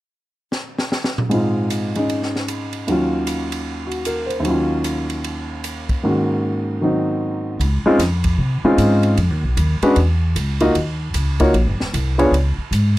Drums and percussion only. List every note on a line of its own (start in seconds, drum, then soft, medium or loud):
0.52 snare medium
0.79 snare medium
0.92 snare medium
1.04 snare medium
1.18 mid tom medium
1.31 ride medium
1.70 hi-hat pedal medium
1.70 ride medium
1.95 ride soft
2.10 ride soft
2.23 snare soft
2.36 snare soft
2.48 hi-hat pedal medium
2.48 ride medium
2.73 ride soft
2.88 ride soft
3.27 hi-hat pedal medium
3.27 ride medium
3.52 ride medium
3.91 ride soft
4.05 hi-hat pedal medium
4.05 ride medium
4.30 ride soft
4.45 ride medium
4.84 hi-hat pedal medium
4.84 ride medium
5.10 ride soft
5.24 ride medium
5.64 hi-hat pedal medium
5.64 ride medium
5.89 kick medium
5.89 ride soft
7.61 ride medium
7.99 snare soft
7.99 hi-hat pedal medium
7.99 ride medium
8.24 kick medium
8.24 ride medium
8.78 hi-hat pedal soft
8.78 ride medium
9.03 ride soft
9.17 ride medium
9.57 hi-hat pedal medium
9.57 ride medium
9.82 ride soft
9.96 ride medium
10.36 hi-hat pedal medium
10.36 ride medium
10.60 ride soft
10.75 ride medium
11.14 hi-hat pedal medium
11.14 ride medium
11.40 kick soft
11.40 ride soft
11.54 ride medium
11.80 snare soft
11.94 hi-hat pedal medium
11.94 ride medium
12.19 ride soft
12.34 ride medium
12.73 hi-hat pedal medium
12.73 ride medium